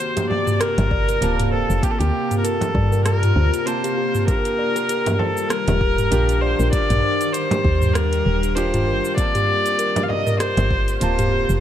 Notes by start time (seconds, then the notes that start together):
Already playing: C3 A#3 C4 F4 C5 A5
0.00 shaker
0.16 G4, closed hi-hat, frame drum, shaker
0.30 G4 D5, frame drum
0.47 mid tom, shaker
0.60 A#4, cross-stick, closed hi-hat, shaker
0.78 G1, closed hi-hat, frame drum, shaker
0.91 D5, kick
1.08 A#4, closed hi-hat, shaker
1.21 D1 A#3 C4 F4 G4 A5, closed hi-hat, shaker
1.40 closed hi-hat, mid tom, shaker
1.52 A4 C5
1.70 F1, shaker
1.81 A#3 C4 F4 G4, kick, closed hi-hat, shaker
1.85 A5
1.91 A4
1.99 D2 G4, closed hi-hat, shaker
2.14 G4
2.31 closed hi-hat, mid tom, shaker
2.38 A#4
2.44 A4 A#4, closed hi-hat, shaker
2.61 closed hi-hat, frame drum, shaker
2.75 G2 D5, kick
2.92 A#4, shaker
3.05 G4 A#4, cross-stick, closed hi-hat, shaker
3.23 closed hi-hat, mid tom, shaker
3.36 D2 C5
3.54 closed hi-hat, shaker
3.66 A#3 C4 F4 C5 A5, closed hi-hat, shaker
3.84 G4, closed hi-hat, shaker
3.97 G4
4.15 mid tom, shaker
4.26 D#3 G3 D4 F4 G4 A#4, kick, closed hi-hat, shaker
4.45 closed hi-hat, shaker
4.59 D5
4.76 A#4, closed hi-hat, shaker
4.89 G4, closed hi-hat, shaker
5.06 closed hi-hat, mid tom, frame drum, shaker
5.19 A4 C5, frame drum
5.37 shaker
5.49 A#4, cross-stick, closed hi-hat, shaker
5.68 D#1 G4, closed hi-hat, frame drum, shaker
5.81 G4, kick
5.98 closed hi-hat, mid tom, shaker
6.11 A#1 D4 F4 G4 A#4, closed hi-hat, shaker
6.29 closed hi-hat, shaker
6.41 C5 D5
6.59 A#1 A#4, shaker
6.71 D4 F4 G4 D5, kick, closed hi-hat, shaker
6.75 G4
6.90 A#1, closed hi-hat, mid tom, shaker
7.03 C5
7.21 closed hi-hat, shaker
7.33 C5, closed hi-hat, shaker
7.51 G4, closed hi-hat, frame drum, shaker
7.65 D#2 G4, kick
7.82 mid tom, shaker
7.94 A#4, cross-stick, closed hi-hat, shaker
8.13 closed hi-hat, shaker
8.26 D#1
8.43 G4, closed hi-hat, shaker
8.55 D4 F4 G4 C5, closed hi-hat, shaker
8.74 F4, closed hi-hat, mid tom, shaker
8.87 G1 A#4
9.05 shaker
9.16 C3 A#3 C4 F4 D5 A5, kick, closed hi-hat, shaker
9.35 G4, closed hi-hat, mid tom, shaker
9.48 G4
9.66 closed hi-hat, shaker
9.79 A#4, closed hi-hat, shaker
9.96 closed hi-hat, frame drum, shaker
10.03 F5
10.09 D5 D#5, frame drum
10.27 A#4, mid tom, shaker
10.39 G4 C5, cross-stick, closed hi-hat, shaker
10.57 G1, closed hi-hat, frame drum, shaker
10.71 kick
10.88 closed hi-hat, shaker
11.00 D1 A#3 C4 F4 C5 A5, closed hi-hat, shaker
11.19 G4, closed hi-hat, mid tom, shaker
11.32 G4
11.49 F1, shaker